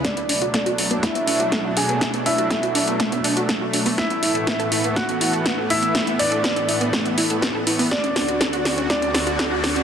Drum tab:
HH |xxoxxxoxxxoxx-ox|xxoxxxoxxxoxx-oo|xxoxxxoxxxoxx-ox|xxoxxxoxxxoxx-oo|
SD |o---o---o---o---|o---o---o---o---|o---o---o---o---|o---o---o---o---|
BD |o---o---o---o---|o---o---o---o---|o---o---o---o---|o---o---o---o---|

HH |xxoxxxoxxxoxx-ox|
SD |o-o-o-o-o-o-o-o-|
BD |o---o---o---o---|